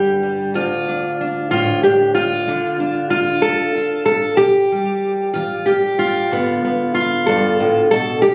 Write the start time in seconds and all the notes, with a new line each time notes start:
Already playing: G2 D3 G3 G4 B4
0.23 G3
0.54 D2 F4
0.88 D4
1.21 D4
1.51 A2 F4
1.83 D4 G4
2.15 F4
2.48 D2 D3 D4
2.80 D4
3.10 F4
3.42 D3 A4
3.75 F4
4.06 A4
4.37 C3 G4
4.72 G3
5.34 E3 F4
5.66 G4
5.99 F4
6.31 G2 D3 B3
6.64 B3
6.94 F4
7.26 G2 A4
7.60 A2
7.91 B2 A4
8.22 C3 G4